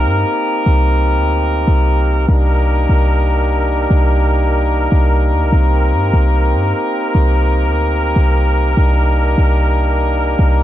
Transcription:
0.00 2.25 A#3 medium
0.00 2.25 C4 medium
0.00 2.25 D#4 medium
0.00 2.25 G4 medium
0.00 2.25 A#4 medium
0.05 0.25 G2 loud
0.66 1.19 C2 loud
1.17 1.65 D2 loud
1.68 2.26 C2 loud
2.28 2.87 C2 loud
2.28 8.73 A#3 medium
2.28 5.50 D4 medium
2.28 8.73 D#4 medium
2.28 5.50 G4 medium
2.28 10.63 A#4 medium
2.89 3.87 C2 loud
3.91 4.88 C2 loud
4.92 5.34 C2 loud
5.32 5.44 D#2 loud
5.43 5.52 C2 loud
5.53 5.95 C2 loud
5.53 8.74 C4 medium
5.53 10.63 G4 medium
5.93 6.13 G2 medium
6.13 6.56 C2 loud
6.54 6.73 G2 medium
7.15 7.67 C2 loud
7.66 8.14 D2 loud
8.16 8.75 C2 loud
8.77 9.36 C2 loud
8.77 10.63 A#3 medium
8.77 10.63 D4 medium
8.77 10.63 D#4 medium
9.38 10.35 C2 loud
10.39 10.63 C2 loud

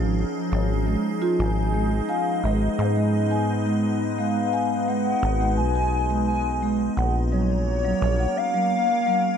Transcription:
0.00 0.25 G#1 loud
0.00 0.11 F3 medium
0.00 1.39 F3 medium
0.00 3.07 C#4 medium
0.00 8.09 D#4 medium
0.00 3.62 G#4 medium
0.00 8.09 D#5 medium
0.52 0.97 G#1 loud
0.52 0.59 F3 medium
0.87 0.98 G#3 medium
1.22 1.38 F4 loud
1.39 2.01 G#1 loud
1.39 6.97 G#3 medium
1.39 2.05 G#5 loud
1.48 6.97 B3 medium
1.74 1.91 G#3 medium
1.89 6.97 B4 medium
2.09 2.45 F5 loud
2.09 2.25 G#5 medium
2.44 2.69 G#1 medium
2.44 2.55 G#3 medium
2.44 2.78 D#5 medium
2.78 5.15 G#2 medium
2.78 3.79 D#5 medium
2.96 3.13 G#3 medium
3.31 3.48 G#5 medium
3.66 3.77 G#3 medium
4.18 4.35 G#3 medium
4.18 4.89 F5 loud
4.53 4.70 G#5 medium
4.88 4.99 G#3 medium
4.88 5.57 F#5 loud
5.23 5.59 G#1 medium
5.40 5.57 G#3 medium
5.58 6.90 B1 loud
5.58 6.23 G#5 loud
5.75 5.92 G#5 medium
6.10 6.21 G#3 medium
6.27 6.76 G#5 loud
6.62 6.79 G#3 medium
6.97 7.94 A#1 medium
6.97 9.38 F#3 medium
6.97 7.14 F#5 medium
7.16 9.38 A#3 medium
7.16 9.38 C#5 medium
7.32 7.43 F#3 medium
7.32 8.38 C#5 loud
7.47 9.38 C#4 medium
7.74 9.38 A#4 loud
7.85 8.01 F#3 medium
8.02 8.27 A#1 medium
8.19 8.36 F#5 medium
8.37 9.38 F5 loud
8.54 8.66 F#3 medium
9.07 9.23 F#3 medium

